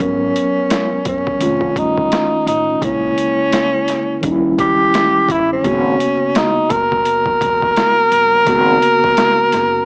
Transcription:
Already playing: F#3 C#4
0.00 G#1 B3 C#4 A#4, kick, closed hi-hat
0.36 closed hi-hat
0.70 snare, closed hi-hat
0.91 muted upright bass stroke
1.05 F#1 C#4, kick, closed hi-hat
1.27 kick
1.38 F1 D#3 G#3 C#4, closed hi-hat
1.42 A3 F4
1.61 kick
1.76 G1 D#4, kick, closed hi-hat
1.98 kick
2.12 snare, closed hi-hat
2.46 A1 D#4, closed hi-hat
2.80 A#1 C#3 G#3 A#3, kick, closed hi-hat
2.84 C#4 E4
3.18 closed hi-hat
3.52 snare, closed hi-hat
3.88 snare, closed hi-hat
4.21 D#2 D#3 G3 C#4, kick, closed hi-hat
4.25 D#4
4.32 E4
4.58 C#2 G4, kick, closed hi-hat
4.94 snare, closed hi-hat
5.29 G1 E4, kick, closed hi-hat
5.53 C#4
5.62 G#1 C#3 A#3 B3, kick, closed hi-hat
5.66 F#4
6.00 closed hi-hat
6.35 D#4, snare, closed hi-hat
6.57 muted upright bass stroke
6.70 F#1 A#4, kick, closed hi-hat
6.92 kick
7.05 closed hi-hat
7.26 kick
7.41 E1, kick, closed hi-hat
7.62 kick
7.76 snare, closed hi-hat
8.12 G1, closed hi-hat
8.45 G#1 C#3 A#3 B3, kick, closed hi-hat
8.49 F#4
8.82 closed hi-hat
9.04 kick
9.17 snare, closed hi-hat
9.39 muted upright bass stroke
9.52 F#1, snare, closed hi-hat

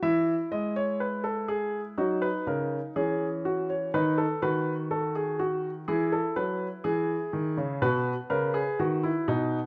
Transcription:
0.02 E3 E4 E5
0.52 G#3 D#5
0.76 C#5
1.00 B4
1.24 A4
1.48 G#4
1.98 F#3 D#4 F#4
2.22 B4
2.47 C#3 A#4
2.96 E3 C#4 G#4
3.45 F#4
3.70 C#5
3.94 D#3 D#4 B4
4.18 A4
4.42 D#3 F#4 B4
4.91 A4
5.15 G#4
5.39 F#4
5.88 E3 E4 G#4
6.12 A4
6.36 F#3 B4
6.84 E3 G#4
7.33 D#3
7.57 C#3
7.82 B2 F#4 B4
8.30 C#3 A#4 B4
8.54 G#4
8.79 D#3 F#4
9.03 E4
9.28 B2 D#4

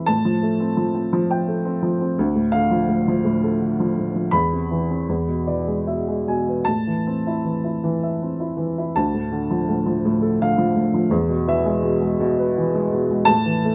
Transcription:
Already playing: E3 C4 E4
0.06 A2 A5
0.25 F3
0.43 A3
0.60 C4
0.77 F3
0.95 C4
1.13 F3
1.31 G5
1.48 A3
1.65 C4
1.83 F3
2.01 C4
2.19 D2
2.35 A2
2.52 D3 F5
2.71 F3
2.89 A2
3.08 F3
3.25 A2
3.44 A4
3.61 D3
3.80 F3
3.98 A2
4.15 F3
4.31 E2 B5
4.53 C3
4.71 E3
4.90 C4
5.09 E2
5.28 B2
5.47 E3 D5
5.67 G#3
5.87 B2 E5
6.08 G#3
6.28 B2 G#5
6.49 B4
6.65 A2 A5
6.87 E3
7.07 C4
7.27 E4
7.45 E3
7.64 E4
7.84 E3
8.03 E5
8.22 C4
8.40 E4
8.57 E3
8.78 E4
8.96 D2 A5
9.14 A2
9.32 D3
9.50 F3
9.69 A2
9.86 F3
10.05 A2
10.22 A4
10.41 D3 F5
10.58 F3
10.76 A2
10.94 F3
11.10 E2
11.29 B2
11.47 E3 E5
11.65 G#3
11.83 B2
12.01 G#3
12.20 B2
12.39 B4
12.57 E3
12.75 G#3
12.93 B2
13.11 G#3
13.25 A2 A5
13.46 E3
13.65 A3

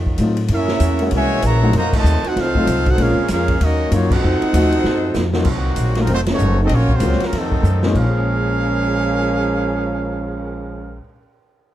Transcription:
Already playing: F2 D#3 F#3 A3 F4
0.06 kick
0.18 A2 F#3 A3 C4 D#4 F4, hi-hat pedal, ride
0.37 ride
0.48 F#2 A#3 C#4 E4, kick, ride
0.52 A#3 C#4 E4 F#4 A#4 E5
0.68 snare
0.80 E2, kick, hi-hat pedal, ride
0.99 G#3 A#3 C#4 E4 F#4, ride
1.11 C2 E3 G#3 C#4, kick, ride
1.16 F#4 C#5 E5 G#5
1.42 A#1 C#3 E3 A#3 F#4 C#5 E5 A#5, kick, hi-hat pedal, ride
1.62 F#3 A3 C4 D#4 F#4
1.73 F2 D#3 F3 A3 A#3 F#4 C5 D#5, kick, ride
1.77 A#5
1.93 C3 D#3 A3, kick, crash
1.98 F#4 C5 D#5 A5
2.04 D#2, hi-hat pedal
2.23 C4 D#4 F#4, muted upright bass stroke, ride
2.27 D#4 A4 C5 F#5
2.36 C#2 A3 C4 D#4 F4 A4 C5 F5, kick, snare, ride
2.55 F#3 A3 C4 D#4 F4, kick
2.67 C2, hi-hat pedal, ride
2.86 C4 D#4 F#4 C5 F#5, kick, ride
2.90 A4
2.96 A#1 C#3 G#3 A#3 C#4 F4, kick, ride
3.00 G#3 A#3 C4 C#4 F4 G#4 A#4 F5
3.19 muted upright bass stroke
3.28 F2 G#3 C#4 F4 G#4 A#4 F5, kick, snare, hi-hat pedal, ride
3.48 kick, ride
3.58 D#2 D#3 C#4, kick, ride
3.62 F#3 A#3 C#4 D#4 F#4 A#4 D#5
3.91 F#2 F#3 A#3 C#4 D#4 F4 F#4 C#5, kick, hi-hat pedal, ride
4.11 C4 D#4 F#4 A4 C5 F#5, kick, crash
4.23 F2 F3 A3 D#4
4.42 muted upright bass stroke, ride
4.53 D#2 F3 A3 C4 D#4 F#4, kick, hi-hat pedal, ride
4.72 ride
4.84 F#2, snare
5.14 F2, snare, hi-hat pedal
5.33 F#3 A#3 C4 D#4 F#4, snare
5.43 C2 F4, kick, crash
5.48 A#2 D#3 F#3 A#3 C4 F#4
5.76 A#1, kick, hi-hat pedal, ride
5.95 D#3 F#3 A3 A#3 C4 D#4 F4, snare, ride
6.01 F#3 C4 D#4 A#4
6.07 F1 D#3 A3 C4, kick, ride
6.13 A3 D#4 F#4 C5
6.26 D#3 A3 C#4, snare, ride
6.34 A3 D#4 F#4 C#5
6.38 F#1, hi-hat pedal
6.61 A3 C4 D#4 F#4 A4
6.65 A#1 C4 D#5, ride
6.70 F#3 C#4, kick
6.74 A#3 F4 F#4 C#5
6.89 kick
6.93 C#3 F#3 A#3 C4 F4 F#4 C5
7.00 C#2 F#3 G#3 A#3 C#4 F4, hi-hat pedal, ride
7.12 snare
7.20 F#3, muted upright bass stroke, snare, ride
7.25 C#3 F#3 A#3 C#4 F4 A#4
7.32 F2 C3 D#3 A3, kick, snare, ride
7.38 F#3 C4 D#4 A4
7.52 kick
7.63 F#2, hi-hat pedal
7.83 A#2 G#3 A#3 C4 C#4 D#4, snare
7.91 A#1 F3 G#3 A#3, kick
7.95 A#2 C#4 G#4 A#4 C5 F5, crash
8.03 C#4
8.10 G#4
8.14 cymbal swell

